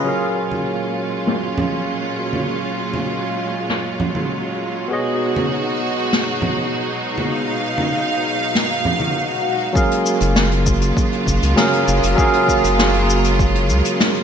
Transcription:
0.04 4.87 A#2 medium
0.04 4.86 F#3 medium
0.04 9.72 F#3 medium
0.04 9.72 G#3 medium
0.04 4.87 C#4 medium
0.04 4.87 F4 medium
0.04 4.87 G#4 medium
0.04 4.88 A#4 medium
0.09 4.88 F5 medium
0.51 high conga medium
1.27 snare medium
1.58 high conga medium
1.58 low conga medium
2.33 high conga medium
2.93 high conga medium
3.69 snare medium
4.00 low conga medium
4.15 high conga medium
4.88 9.71 B2 medium
4.88 9.71 B3 medium
4.88 9.71 D#4 medium
4.88 9.71 F#4 medium
4.88 7.30 F#4 medium
4.88 9.72 G#4 medium
4.88 9.73 C#5 medium
4.93 9.73 D#5 medium
5.36 high conga medium
6.13 snare medium
6.42 high conga medium
6.42 low conga medium
7.18 high conga medium
7.33 9.73 F5 medium
7.78 high conga medium
8.54 snare medium
8.54 swell medium
8.85 low conga medium
9.00 high conga medium
9.73 14.23 C#3 medium
9.73 11.52 F#3 medium
9.73 14.23 F#3 medium
9.73 14.23 G#3 medium
9.73 14.23 A#3 medium
9.73 11.53 C#4 medium
9.73 14.23 F4 medium
9.73 11.54 G#4 medium
9.73 11.54 A#4 medium
9.73 kick loud
9.73 cabasa medium
9.78 11.55 F5 medium
9.91 closed hi-hat medium
10.06 cabasa medium
10.20 10.92 F#1 medium
10.20 closed hi-hat medium
10.20 cabasa medium
10.36 snare medium
10.36 cabasa medium
10.51 closed hi-hat soft
10.66 kick loud
10.66 cabasa loud
10.81 closed hi-hat medium
10.81 cabasa medium
10.97 kick loud
10.97 cabasa medium
11.13 closed hi-hat soft
11.27 11.39 F#1 medium
11.27 kick medium
11.27 cabasa medium
11.42 11.55 C#2 medium
11.42 closed hi-hat medium
11.42 cabasa medium
11.56 12.14 F#3 medium
11.56 12.14 C#4 medium
11.56 12.14 G#4 medium
11.56 12.15 A#4 medium
11.56 12.15 F5 medium
11.56 snare loud
11.56 cabasa medium
11.73 closed hi-hat medium
11.88 12.00 F#1 loud
11.88 cabasa medium
12.03 12.16 F#1 medium
12.03 closed hi-hat medium
12.03 cabasa medium
12.15 14.23 F#3 medium
12.15 14.23 C#4 medium
12.15 14.23 G#4 medium
12.15 14.23 A#4 medium
12.15 kick loud
12.15 cabasa medium
12.20 14.23 F5 medium
12.33 closed hi-hat medium
12.48 kick medium
12.48 cabasa medium
12.64 13.71 F#1 medium
12.64 closed hi-hat medium
12.64 cabasa medium
12.79 snare loud
12.79 cabasa soft
12.94 closed hi-hat medium
13.10 cabasa medium
13.24 closed hi-hat medium
13.24 cabasa medium
13.39 kick loud
13.39 cabasa medium
13.55 closed hi-hat medium
13.69 13.82 C#2 medium
13.69 cabasa medium
13.85 closed hi-hat medium
13.85 cabasa medium
14.00 snare loud
14.00 cabasa medium
14.14 closed hi-hat medium

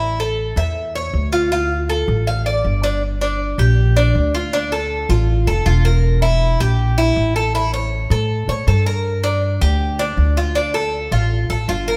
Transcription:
0.00 0.51 A1 medium
0.00 0.18 E4 medium
0.20 0.56 A4 medium
0.56 1.09 E2 medium
0.56 0.94 E5 medium
0.95 1.32 C#5 medium
1.14 2.02 D2 medium
1.32 1.51 F4 medium
1.52 1.88 F4 medium
1.89 2.26 A4 medium
2.08 2.61 A1 medium
2.27 2.45 F5 medium
2.46 2.82 D5 medium
2.64 3.53 G1 medium
2.83 3.02 D4 medium
3.21 3.58 D4 medium
3.58 4.11 A#1 medium
3.58 3.96 G4 medium
3.97 4.33 D4 medium
4.15 5.04 D2 medium
4.35 4.53 F4 medium
4.53 4.71 D4 medium
4.72 5.09 A4 medium
5.09 5.44 A1 medium
5.09 5.46 F4 medium
5.47 5.65 F1 medium
5.47 5.66 A4 medium
5.66 6.54 E1 medium
5.66 5.84 F4 medium
5.85 6.21 A#4 medium
6.22 6.59 E4 medium
6.60 7.13 A#1 medium
6.60 6.97 G4 medium
6.98 7.34 E4 medium
7.16 8.05 A1 medium
7.36 7.54 A4 medium
7.55 7.73 E4 medium
7.74 8.10 C#5 medium
8.10 8.46 A2 medium
8.10 8.48 A4 medium
8.48 8.66 A2 medium
8.48 8.67 C#5 medium
8.67 9.55 G2 medium
8.67 8.86 A4 medium
8.86 9.23 A#4 medium
9.24 9.60 D4 medium
9.61 10.14 D2 medium
9.61 9.98 G4 medium
9.99 10.36 D4 medium
10.17 11.06 D2 medium
10.37 10.55 F4 medium
10.55 10.74 D4 medium
10.74 11.11 A4 medium
11.11 11.47 A1 medium
11.11 11.49 F4 medium
11.50 11.67 A1 medium
11.50 11.68 A4 medium
11.68 11.97 G1 medium
11.68 11.87 F4 medium
11.88 11.97 A#4 medium

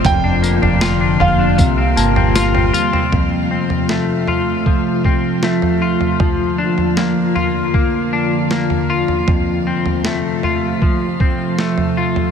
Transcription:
0.00 1.54 F3 medium
0.00 0.12 A3 medium
0.00 0.12 C4 medium
0.00 0.81 F4 medium
0.00 3.08 F4 medium
0.00 0.15 E5 medium
0.04 0.60 F1 loud
0.04 1.66 F2 medium
0.04 1.57 D3 medium
0.04 3.09 A#3 medium
0.04 1.24 G5 loud
0.04 kick loud
0.04 floor tom loud
0.04 tambourine medium
0.24 0.61 D4 medium
0.43 1.66 A#3 medium
0.43 tambourine medium
0.62 1.17 F1 loud
0.62 0.99 D4 medium
0.62 floor tom medium
0.81 1.19 F4 medium
0.81 snare loud
0.81 tambourine medium
1.00 1.38 D4 medium
1.20 1.57 F1 medium
1.20 2.35 F4 medium
1.20 2.70 F5 medium
1.20 floor tom medium
1.39 1.66 D4 medium
1.58 1.95 C2 loud
1.58 3.20 C3 medium
1.58 3.11 C3 medium
1.58 3.11 G3 medium
1.58 kick loud
1.58 tambourine medium
1.78 2.16 C4 medium
1.97 2.70 G1 medium
1.97 3.20 A#3 medium
1.97 3.47 A5 medium
1.97 tambourine medium
2.16 2.54 C4 medium
2.16 floor tom medium
2.35 2.73 F4 medium
2.35 snare loud
2.35 tambourine loud
2.54 2.92 C4 medium
2.54 floor tom medium
2.74 4.28 F4 medium
2.74 tambourine medium
2.93 3.51 C4 medium
2.93 floor tom medium
3.12 6.20 F2 medium
3.12 6.17 C3 medium
3.12 9.24 F3 medium
3.12 6.17 A3 medium
3.12 12.31 F4 medium
3.12 kick medium
3.12 floor tom medium
3.51 5.04 C4 soft
3.70 floor tom medium
3.89 5.42 A3 soft
3.89 snare medium
4.28 5.81 F4 medium
4.28 floor tom soft
4.66 6.20 F3 medium
4.66 kick medium
5.04 6.28 C4 medium
5.04 kick medium
5.43 6.28 A3 medium
5.43 snare medium
5.62 floor tom medium
5.82 7.35 F4 medium
6.01 floor tom medium
6.19 9.25 F2 medium
6.19 9.25 D3 medium
6.19 9.70 F3 medium
6.19 9.24 A#3 medium
6.19 kick loud
6.19 floor tom medium
6.58 8.12 D4 medium
6.78 floor tom medium
6.97 7.73 A#3 medium
6.97 snare medium
7.35 8.89 F4 medium
7.35 floor tom medium
7.74 8.50 A#3 medium
7.74 kick medium
8.13 9.36 D4 medium
8.51 9.36 A#3 medium
8.51 snare loud
8.70 floor tom medium
8.90 10.44 F4 medium
9.08 floor tom medium
9.28 12.31 F2 medium
9.28 12.31 C3 medium
9.28 12.31 F3 medium
9.28 12.31 A3 medium
9.28 kick loud
9.28 floor tom medium
9.67 11.20 C4 medium
9.86 floor tom medium
10.05 11.58 A3 medium
10.05 snare loud
10.43 11.97 F4 medium
10.43 floor tom medium
10.82 12.31 F3 medium
10.82 kick medium
11.20 12.31 C4 soft
11.20 kick medium
11.59 12.31 A3 medium
11.59 snare loud
11.78 floor tom medium
11.97 12.31 F4 medium
12.16 floor tom medium

